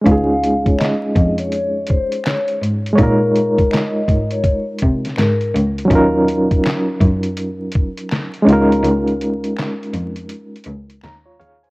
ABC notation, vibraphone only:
X:1
M:4/4
L:1/16
Q:"Swing 16ths" 1/4=82
K:Db
V:1 name="Vibraphone"
f3 d e3 d3 c2 d2 z2 | B4 e3 d2 z3 B2 z2 | z16 | z16 |]